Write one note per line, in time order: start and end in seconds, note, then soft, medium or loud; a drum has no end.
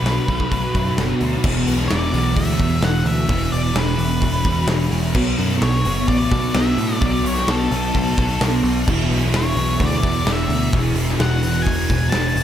0.00 0.18 B1 medium
0.00 0.26 B2 loud
0.00 0.27 F#3 medium
0.00 0.26 B3 loud
0.00 0.93 B4 medium
0.06 snare loud
0.06 open hi-hat medium
0.27 0.43 B1 medium
0.27 0.97 B2 medium
0.27 0.97 F#3 medium
0.27 0.96 B3 medium
0.27 kick medium
0.27 open hi-hat soft
0.40 kick medium
0.51 0.66 B1 medium
0.51 kick medium
0.51 open hi-hat medium
0.75 0.90 F#2 medium
0.75 kick medium
0.75 open hi-hat medium
0.97 1.12 F#1 medium
0.97 1.43 B2 medium
0.97 1.44 F#3 medium
0.97 snare loud
0.97 open hi-hat medium
1.01 1.44 B3 medium
1.21 1.36 D2 medium
1.21 open hi-hat medium
1.44 1.63 E1 loud
1.44 2.15 E2 loud
1.44 2.13 B2 loud
1.44 2.13 E3 loud
1.44 kick loud
1.44 crash loud
1.67 1.86 B1 medium
1.67 open hi-hat medium
1.79 snare soft
1.88 2.10 E1 loud
1.88 2.37 D5 medium
1.88 snare loud
1.88 open hi-hat medium
2.13 2.33 B1 loud
2.13 3.27 E2 medium
2.13 3.28 B2 medium
2.13 3.28 E3 loud
2.13 open hi-hat medium
2.36 2.56 D2 loud
2.36 2.84 E5 loud
2.36 kick loud
2.36 open hi-hat medium
2.60 2.79 E2 medium
2.60 kick loud
2.60 open hi-hat medium
2.81 3.01 E1 medium
2.81 3.07 F#5 loud
2.81 snare loud
2.81 open hi-hat medium
3.05 3.25 D2 medium
3.05 3.50 E5 loud
3.05 open hi-hat medium
3.28 3.48 E1 loud
3.28 3.97 E2 loud
3.28 3.98 B2 loud
3.28 3.96 E3 loud
3.28 kick loud
3.28 open hi-hat medium
3.52 3.72 E1 medium
3.52 3.76 D5 medium
3.52 open hi-hat medium
3.74 3.94 E1 loud
3.74 4.66 B4 medium
3.74 snare loud
3.74 open hi-hat medium
3.97 4.18 E1 medium
3.97 5.15 E2 medium
3.97 5.14 B2 medium
3.97 5.13 E3 loud
3.97 open hi-hat medium
4.22 4.42 E1 loud
4.22 kick medium
4.22 open hi-hat medium
4.44 4.65 E1 loud
4.44 kick loud
4.44 open hi-hat medium
4.67 4.87 E1 medium
4.67 snare loud
4.67 open hi-hat medium
4.91 5.11 E1 medium
4.91 open hi-hat medium
5.15 5.35 B1 loud
5.15 5.87 B2 loud
5.15 5.86 F#3 loud
5.15 5.84 B3 loud
5.15 kick loud
5.15 crash loud
5.38 5.58 F#2 loud
5.38 open hi-hat medium
5.51 snare soft
5.62 5.81 B1 loud
5.62 6.08 C#5 medium
5.62 snare loud
5.62 open hi-hat loud
5.85 6.05 F#1 loud
5.85 7.01 B2 medium
5.85 7.01 F#3 medium
5.85 7.04 B3 loud
5.85 open hi-hat medium
6.08 6.28 A1 loud
6.08 6.56 D5 loud
6.08 kick medium
6.08 open hi-hat medium
6.32 6.51 B2 medium
6.32 kick loud
6.32 open hi-hat medium
6.54 6.74 B1 medium
6.54 7.04 E5 loud
6.54 snare loud
6.54 open hi-hat medium
6.78 6.97 A2 medium
6.78 open hi-hat medium
7.01 7.21 B1 loud
7.01 7.70 B2 loud
7.01 7.71 F#3 loud
7.01 7.72 B3 loud
7.01 7.25 D5 loud
7.01 kick loud
7.01 open hi-hat medium
7.23 7.43 B1 loud
7.23 7.50 C#5 medium
7.23 open hi-hat medium
7.37 snare soft
7.47 7.67 B1 medium
7.47 8.38 A4 medium
7.47 snare loud
7.47 open hi-hat medium
7.71 7.91 B1 medium
7.71 8.88 B2 medium
7.71 8.87 F#3 medium
7.71 11.22 B3 medium
7.71 open hi-hat medium
7.94 8.14 B1 loud
7.94 kick medium
7.94 open hi-hat medium
8.17 8.37 B1 medium
8.17 kick loud
8.17 open hi-hat medium
8.41 8.60 B1 medium
8.41 snare loud
8.41 open hi-hat medium
8.63 8.83 B1 medium
8.63 open hi-hat medium
8.87 9.07 E1 loud
8.87 9.59 E2 loud
8.87 9.57 B2 loud
8.87 9.57 E3 loud
8.87 kick loud
8.87 crash loud
9.10 9.30 B1 medium
9.10 open hi-hat medium
9.32 9.52 E1 medium
9.32 snare loud
9.32 open hi-hat loud
9.36 9.83 C#5 medium
9.56 9.76 B1 loud
9.56 10.73 B2 medium
9.56 10.72 E3 medium
9.56 open hi-hat medium
9.60 10.72 E2 medium
9.80 10.00 D2 loud
9.80 kick medium
9.80 open hi-hat loud
9.86 10.31 D5 loud
10.03 10.23 E2 medium
10.03 kick medium
10.03 open hi-hat medium
10.26 10.46 E1 medium
10.26 snare loud
10.26 open hi-hat medium
10.33 10.73 E5 loud
10.48 10.69 D2 medium
10.48 open hi-hat medium
10.73 10.93 E1 loud
10.73 11.42 E2 loud
10.73 11.43 B2 loud
10.73 11.42 E3 loud
10.73 kick loud
10.73 open hi-hat medium
10.94 11.15 E1 medium
10.94 open hi-hat medium
11.09 snare soft
11.19 11.39 E1 loud
11.19 11.69 F#5 medium
11.19 snare loud
11.19 open hi-hat medium
11.43 11.63 E1 medium
11.43 12.44 E2 medium
11.43 12.44 B2 medium
11.43 12.44 E3 loud
11.43 open hi-hat medium
11.62 12.08 G#5 loud
11.62 open hi-hat medium
11.66 11.86 E1 loud
11.66 kick medium
11.89 12.09 E1 medium
11.89 kick loud
11.89 open hi-hat medium
12.10 12.33 E1 medium
12.10 12.44 A5 loud
12.10 snare loud
12.10 open hi-hat medium
12.35 12.44 E1 medium
12.35 open hi-hat medium